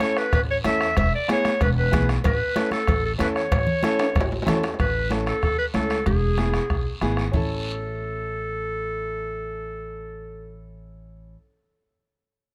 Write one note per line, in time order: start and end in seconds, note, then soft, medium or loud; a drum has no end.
0.00 0.23 C#4 medium
0.00 0.23 E4 medium
0.00 0.23 A4 medium
0.00 0.19 C#5 medium
0.00 bombo rim medium
0.00 cowbell medium
0.00 high conga medium
0.00 short guiro medium
0.17 0.33 B4 medium
0.17 bombo rim medium
0.17 short guiro medium
0.33 0.58 A1 loud
0.33 0.41 B4 medium
0.33 bombo low medium
0.33 bombo rim medium
0.33 cowbell medium
0.33 long guiro medium
0.50 0.57 C#5 medium
0.64 0.90 E2 medium
0.64 0.87 C#4 medium
0.64 0.87 E4 medium
0.64 0.87 A4 medium
0.64 0.95 E5 medium
0.64 bombo rim medium
0.64 cowbell medium
0.64 high conga medium
0.64 short guiro medium
0.81 bombo rim medium
0.81 short guiro medium
0.97 1.09 E1 loud
0.97 1.12 E5 loud
0.97 bombo low medium
0.97 bombo rim medium
0.97 cowbell loud
0.97 long guiro medium
1.15 1.29 D5 medium
1.28 1.51 B3 medium
1.28 1.51 E4 medium
1.28 1.51 G#4 medium
1.28 1.60 C#5 medium
1.28 bombo rim medium
1.28 cowbell medium
1.28 high conga medium
1.28 short guiro medium
1.45 bombo rim medium
1.45 high conga medium
1.45 short guiro medium
1.61 1.86 E1 loud
1.61 1.70 B4 medium
1.61 bombo low medium
1.61 bombo rim medium
1.61 cowbell medium
1.61 long guiro medium
1.78 2.07 B4 medium
1.92 2.18 B1 medium
1.92 2.14 B3 medium
1.92 2.14 E4 medium
1.92 2.14 G#4 medium
1.92 bombo low medium
1.92 bombo rim medium
1.92 cowbell medium
1.92 high conga medium
1.92 low conga medium
1.92 short guiro medium
2.09 bombo rim medium
2.09 short guiro medium
2.24 2.37 A1 loud
2.24 2.70 B4 medium
2.24 bombo low medium
2.24 bombo rim medium
2.24 cowbell loud
2.24 long guiro medium
2.56 2.78 C#4 medium
2.56 2.78 E4 medium
2.56 2.78 A4 medium
2.56 bombo rim medium
2.56 cowbell medium
2.56 high conga medium
2.56 short guiro medium
2.71 3.02 A4 medium
2.71 bombo rim medium
2.71 high conga medium
2.71 short guiro medium
2.87 3.13 A1 loud
2.87 bombo low medium
2.87 bombo rim medium
2.87 cowbell medium
2.87 long guiro medium
3.06 3.12 A4 medium
3.18 3.45 E2 medium
3.18 3.41 C#4 medium
3.18 3.41 E4 medium
3.18 3.42 A4 medium
3.18 3.28 B4 medium
3.18 bombo rim medium
3.18 cowbell medium
3.18 high conga medium
3.18 short guiro medium
3.36 4.43 C#5 medium
3.36 bombo rim medium
3.36 short guiro medium
3.52 3.64 A1 loud
3.52 bombo low medium
3.52 bombo rim medium
3.52 cowbell loud
3.52 long guiro medium
3.67 low conga medium
3.83 4.05 C#4 medium
3.83 4.06 E4 medium
3.83 4.06 A4 medium
3.83 bombo rim medium
3.83 cowbell medium
3.83 high conga medium
3.83 short guiro medium
3.99 bombo rim medium
3.99 high timbale medium
3.99 short guiro medium
4.16 4.41 A1 medium
4.16 bombo low medium
4.16 bombo rim medium
4.16 cowbell medium
4.16 long guiro medium
4.21 low timbale loud
4.32 low timbale medium
4.42 4.69 C#4 medium
4.42 low timbale medium
4.47 4.73 E2 medium
4.47 4.69 E4 medium
4.47 4.69 A4 medium
4.47 bombo rim medium
4.47 cowbell medium
4.47 high conga medium
4.47 low conga medium
4.47 short guiro medium
4.53 low timbale medium
4.63 bombo rim medium
4.63 low timbale medium
4.63 short guiro medium
4.74 low timbale medium
4.79 5.30 A1 loud
4.79 5.09 B4 loud
4.79 bombo low medium
4.79 bombo rim medium
4.79 long guiro medium
5.10 5.33 C#4 medium
5.10 5.33 E4 medium
5.10 5.33 A4 medium
5.10 bombo rim medium
5.10 high conga medium
5.10 short guiro medium
5.26 5.42 A4 medium
5.26 bombo rim medium
5.26 short guiro medium
5.43 5.56 E2 medium
5.43 5.58 A4 loud
5.43 bombo low medium
5.43 bombo rim medium
5.43 long guiro medium
5.58 5.66 B4 medium
5.74 6.00 C#2 medium
5.74 5.96 C#4 medium
5.74 5.96 E4 medium
5.74 5.97 A4 medium
5.74 6.04 A4 medium
5.74 bombo rim medium
5.74 high conga medium
5.74 short guiro medium
5.90 bombo rim medium
5.90 short guiro medium
6.06 6.57 E1 loud
6.06 6.98 G#4 medium
6.06 bombo low medium
6.06 bombo rim medium
6.06 long guiro medium
6.37 6.60 B3 medium
6.37 6.60 E4 medium
6.37 6.61 G#4 medium
6.37 bombo rim medium
6.37 high conga medium
6.37 short guiro medium
6.54 bombo rim medium
6.54 short guiro medium
6.70 6.83 B1 medium
6.70 bombo low medium
6.70 bombo rim medium
6.70 long guiro medium
7.01 7.27 G#1 medium
7.01 7.24 B3 medium
7.01 7.24 E4 medium
7.01 7.24 G#4 medium
7.01 bombo rim medium
7.01 high conga medium
7.01 short guiro medium
7.17 bombo rim medium
7.17 short guiro medium
7.32 11.35 A1 medium
7.32 11.34 C#4 medium
7.32 11.35 E4 medium
7.32 10.65 A4 medium
7.32 bombo low medium
7.32 low conga medium
7.32 long guiro medium
7.36 11.36 A4 medium